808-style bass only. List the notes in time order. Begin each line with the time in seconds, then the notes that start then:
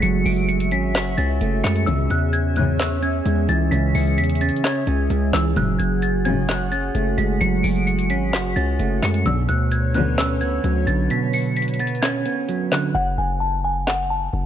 0.03 F#1
0.26 F#1
0.72 G#1
0.95 F#1
1.18 C#2
1.41 F#1
1.64 F#2
1.87 C#2
2.10 E2
3.26 E2
3.49 C#2
3.72 C#2
3.95 C#2
4.18 E2
4.87 C#2
5.10 C#2
5.33 C#2
5.56 F#1
5.80 F#1
6.95 F#1
7.18 F#1
7.41 F#1
7.64 F#1
8.10 G#1
8.33 F#1
8.56 C#2
8.79 F#1
9.03 F#2
9.26 B1
9.49 D2
10.64 D2
10.87 B1
12.95 F#1
13.18 F#1
14.33 F#1